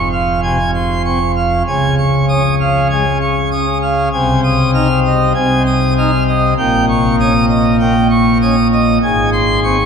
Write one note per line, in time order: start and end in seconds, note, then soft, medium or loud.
0.00 1.63 F1 medium
0.00 1.63 F2 medium
0.12 0.40 F5 medium
0.43 0.57 C3 medium
0.43 0.71 G#5 medium
0.74 1.02 C6 medium
1.05 1.19 C4 medium
1.05 1.32 C#6 medium
1.36 1.63 F5 medium
1.67 4.09 C#2 medium
1.67 4.10 C#3 medium
1.67 1.95 G#5 medium
1.98 2.25 C#6 medium
2.29 2.43 C#4 medium
2.29 2.55 D#6 medium
2.60 2.87 F5 medium
2.90 3.04 G#3 medium
2.90 3.18 G#5 medium
3.21 3.49 C#6 medium
3.51 3.66 C#4 medium
3.51 3.78 D#6 medium
3.82 4.08 F5 medium
4.13 5.33 C2 medium
4.13 5.33 C3 medium
4.13 4.40 G#5 medium
4.44 4.71 D#6 medium
4.74 4.88 D#4 medium
4.74 5.00 F6 medium
5.05 5.32 D#5 medium
5.35 6.54 C2 medium
5.35 6.54 C3 medium
5.35 5.62 G#5 medium
5.66 5.93 D#6 medium
5.98 6.11 D#4 medium
5.98 6.23 F6 medium
6.28 6.54 D#5 medium
6.58 8.99 A#1 medium
6.58 8.99 A#2 medium
6.58 6.85 G5 medium
6.89 7.16 C#6 medium
7.20 7.33 C#4 medium
7.20 7.45 D#6 medium
7.49 7.77 D#5 medium
7.80 7.94 A#3 medium
7.80 8.07 G5 medium
8.10 8.38 C#6 medium
8.42 8.55 C#4 medium
8.42 8.68 D#6 medium
8.72 8.98 D#5 medium
9.03 9.86 G#1 medium
9.03 9.86 G#2 medium
9.03 9.30 G#5 medium
9.33 9.60 C6 medium
9.64 9.77 C4 medium
9.64 9.86 C#6 medium